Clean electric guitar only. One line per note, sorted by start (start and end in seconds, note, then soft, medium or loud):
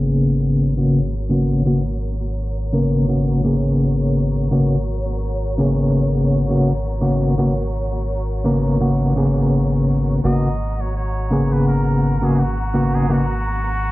0.00 0.73 C#3 medium
0.00 0.73 A#3 medium
0.00 0.74 B3 medium
0.00 0.74 G#4 medium
0.77 0.98 C#3 medium
0.77 0.99 A#3 medium
0.77 0.99 B3 medium
0.77 0.99 F#4 medium
1.29 1.62 C#3 medium
1.29 1.62 A#3 medium
1.29 1.62 B3 medium
1.29 1.62 F#4 medium
1.65 1.81 C#3 medium
1.65 1.81 A#3 medium
1.65 1.81 B3 medium
1.65 1.81 F#4 medium
2.73 3.05 C#3 medium
2.73 3.05 A#3 medium
2.73 3.05 B3 medium
2.73 3.05 A#4 medium
3.08 3.40 C#3 medium
3.08 3.40 A#3 medium
3.08 3.41 B3 medium
3.08 3.41 F#4 medium
3.44 4.47 C#3 medium
3.44 4.48 A#3 medium
3.44 4.48 B3 medium
3.44 4.48 G#4 medium
4.51 4.75 C#3 medium
4.51 4.75 A#3 medium
4.51 4.75 B3 medium
4.51 4.75 F#4 medium
5.58 6.44 C#3 medium
5.58 6.45 A#3 medium
5.58 6.45 B3 medium
5.58 6.46 G#4 medium
6.49 6.70 C#3 medium
6.49 6.71 A#3 medium
6.49 6.71 B3 medium
6.49 6.71 F#4 medium
7.01 7.33 C#3 medium
7.01 7.33 A#3 medium
7.01 7.34 B3 medium
7.01 7.34 F#4 medium
7.38 7.52 C#3 medium
7.38 7.53 A#3 medium
7.38 7.53 B3 medium
7.38 7.53 F#4 medium
8.44 8.76 C#3 medium
8.44 8.76 A#3 medium
8.44 8.77 B3 medium
8.44 8.77 A#4 medium
8.80 9.12 C#3 medium
8.80 9.12 A#3 medium
8.80 9.12 B3 medium
8.80 9.13 F#4 medium
9.16 10.19 C#3 medium
9.16 10.19 A#3 medium
9.16 10.20 B3 medium
9.16 10.20 G#4 medium
10.24 10.47 C#3 medium
10.24 10.47 A#3 medium
10.24 10.47 B3 medium
10.24 10.47 F#4 medium
11.31 12.16 C#3 medium
11.31 12.17 A#3 medium
11.31 12.17 B3 medium
11.31 12.17 G#4 medium
12.21 12.42 C#3 medium
12.21 12.42 A#3 medium
12.21 12.42 B3 medium
12.21 12.43 F#4 medium
12.74 13.05 C#3 medium
12.74 13.05 A#3 medium
12.74 13.05 B3 medium
12.74 13.06 F#4 medium
13.09 13.24 C#3 medium
13.09 13.24 A#3 medium
13.09 13.24 B3 medium
13.09 13.25 F#4 medium